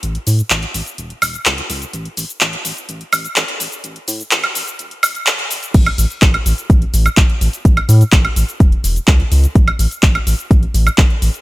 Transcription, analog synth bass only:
\new Staff \with { instrumentName = "Analog synth bass" } { \clef bass \time 4/4 \key a \major \tempo 4 = 126 a,,8 a,8 a,,8 a,,8 e,,8 e,,8 cis,8 cis,8 | a,,8 a,,8 a,,8 a,,8 a,,8 a,,8 a,,8 a,,8 | a,,8 a,8 a,,8 a,,8 e,,8 e,,8 a,,8 a,,8 | a,,8 a,,8 a,,8 a,,8 a,,8 a,,8 a,,8 a,,8 |
a,,8 a,8 a,,8 a,,8 e,,8 e,,8 cis,8 cis,8 | a,,8 a,,8 a,,8 a,,8 a,,8 a,,8 a,,8 a,,8 | }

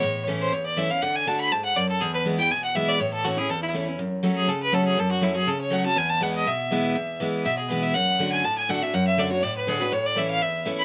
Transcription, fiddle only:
\new Staff \with { instrumentName = "Fiddle" } { \time 4/4 \key a \major \tempo 4 = 243 cis''4 r8 c''8 cis''8 d''8 e''8 f''8 | fis''8 gis''8 a''8 b''8 a''8 fis''8 d''8 a'8 | gis'8 b'8 r8 g''8 gis''8 fis''8 e''8 d''8 | cis''8 a'8 fis'8 gis'8 a'8 e'8 r4 |
r4. gis'8 a'8 b'8 a'8 gis'8 | a'8 fis'8 e'8 gis'8 a'8 cis''8 fis''8 a''8 | gis''8 a''8 fis''8 dis''8 e''2~ | e''4 r4 e''8 gis'8 b'8 e''8 |
fis''4. gis''8 a''8 gis''8 fis''8 e''8 | fis''8 e''8 d''8 cis''8 d''8 b'8 gis'8 b'8 | cis''8 d''8 e''8 f''8 e''4 r8 b''8 | }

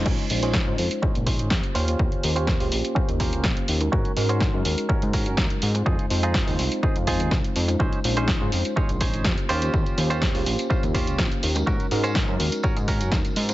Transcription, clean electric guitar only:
\new Staff \with { instrumentName = "Clean electric guitar" } { \time 4/4 \key bes \minor \tempo 4 = 124 <des' ees' aes' c''>8 r16 <des' ees' aes' c''>8. r8 <des' ees' aes' c''>16 r16 <des' ees' aes' c''>8 r8 <des' f' g' c''>8~ | <des' f' g' c''>8 r16 <des' f' g' c''>8. r8 <des' f' g' c''>16 r16 <des' f' g' bes'>8 r4 | <des' ges' bes'>8 r16 <des' ges' c''>8. r8 <des' ges' bes'>16 r16 <des' ges' bes'>8 r4 | <ees' f' aes'>8 r16 <ees' f' aes'>8. r8 <ees' f' aes'>16 r16 <ees' f' aes'>8 r4 |
<des' ees' aes' c''>8 r16 <des' ees' aes' c''>8. r8 <des' ees' aes' des''>16 r16 <des' ees' aes' c''>8 r8 <des' f' g' c''>8~ | <des' f' g' c''>8 r16 <des' f' g' c''>8. r8 <des' f' g' c''>16 r16 <des' f' g' c''>8 r4 | <des' ges' bes'>8 r16 <des' ges' c''>8. r8 <des' ges' bes'>16 r16 <des' ges' bes'>8 r4 | }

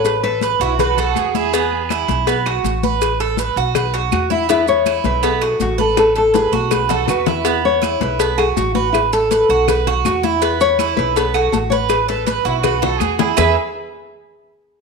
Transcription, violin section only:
\new Staff \with { instrumentName = "Violin section" } { \time 4/4 \key e \major \tempo 4 = 162 << { r4. e'8 fis'8 a'8 gis'8 gis'8~ | gis'4. r2 r8 | r1 | r1 |
r2 r8 a'8 b'4 | r1 | r1 | r1 |
r4. e'8 fis'8 a'8 gis'8 gis'8~ | gis'4. r2 r8 | } \\ { r1 | r1 | r1 | r1 |
r1 | r1 | r1 | r1 |
r1 | gis'8 r2. r8 | } >> }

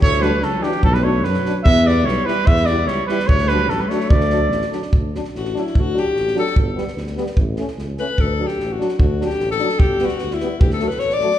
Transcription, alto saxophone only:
\new Staff \with { instrumentName = "Alto saxophone" } { \time 2/4 \key d \major \tempo 4 = 147 a8 g8 fis8 e8 | fis16 g16 a8 fis8. r16 | b8 b8 g8 g8 | b8 b8 g8 g8 |
a8 g8 fis16 g16 a8 | a4. r8 | r4 fis'8 e'8 | fis'8 g'4 a'8 |
r2 | r4. b'8 | \tuplet 3/2 { a'4 g'8~ g'8 fis'4 } | \tuplet 3/2 { fis'4 g'8~ g'8 a'4 } |
\tuplet 3/2 { g'4 fis'8~ fis'8 e'4 } | \tuplet 3/2 { g'8 a'8 b'8 cis''8 d''4 } | }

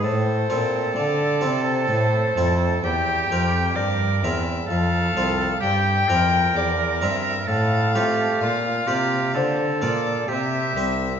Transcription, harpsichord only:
<<
  \new Staff \with { instrumentName = "Harpsichord" } { \time 3/4 \key a \phrygian \tempo 4 = 65 r8 <c' e' a'>4 <c' e' a'>4 <c' e' a'>8 | \key c \mixolydian r8 <c' bes'>4 <c' bes'>8 r8 <c' f' a'>8 | r8 <c' e' bes'>4 <c' e' bes'>8 r8 <c' f' a'>8 | r8 <bes f' d''>4 <bes f' d''>8 r8 <c' c''>8 | }
  \new Staff \with { instrumentName = "Harpsichord" } { \clef bass \time 3/4 \key a \phrygian a,8 bes,8 d8 c8 a,8 f,8 | \key c \mixolydian e,8 f,8 g,8 e,8 f,8 c,8 | g,8 f,8 e,8 g,8 a,8 a8 | bes,8 c8 d8 bes,8 c8 c,8 | }
>>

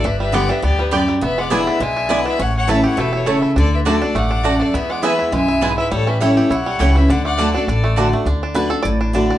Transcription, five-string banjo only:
\new Staff \with { instrumentName = "Five-string banjo" } { \time 4/4 \key d \major \tempo 4 = 204 << { r1 | r1 | r1 | r1 |
r1 | r1 | r1 | r4 b'8 a'8 d''4. r8 | } \\ { d'8 g8 b8 d'8 b8 g8 g'8 g8 | b8 gis8 d'8 d'8 gis8 d'8 gis8 d'8 | cis'4 e'8 g'8 a8 e'8 a8 e'8 | d'4 d'8 d'8 a8 d'8 a8 d'8 |
b8 gis8 e'8 e'8 gis8 e'8 gis8 e'8 | g8 cis'8 e'8 g'8 e'8 g8 g'8 cis'8 | d'8 a8 d'8 d'8 d'8 a8 d'8 a8 | d'8 d'4. r8 d'8 d'8 d'8 | } >> }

